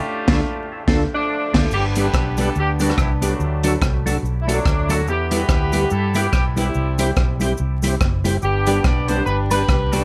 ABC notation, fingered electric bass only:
X:1
M:4/4
L:1/8
Q:"Swing" 1/4=143
K:G
V:1 name="Fingered electric bass" clef=bass
z D,, z2 D,, z2 D,, | G,,,2 B,,,2 D,,2 C,,2 | D,,2 C,,2 B,,,2 D,,2 | E,,2 D,,2 G,,2 B,,,2 |
C,,2 B,,,2 C,,2 F,,,2 | G,,,2 B,,,2 G,,,2 C,,2 |]